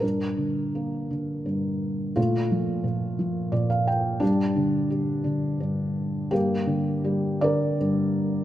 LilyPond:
<<
  \new Staff \with { instrumentName = "Felt piano" } { \time 6/8 \key g \minor \tempo 4. = 57 << { r2. | r2 d''16 f''16 g''8 | r2. | r2. | } \\ { <d' bes'>2. | <a f'>2. | <g d'>2. | <bes g'>4. <bes' d''>4. | } >> }
  \new Staff \with { instrumentName = "Felt piano" } { \clef bass \time 6/8 \key g \minor g,8 d8 bes8 d8 g,4 | bes,8 f8 bes,8 f8 bes,4 | g,8 d8 g8 d8 g,4 | g,8 d8 g8 d8 g,4 | }
>>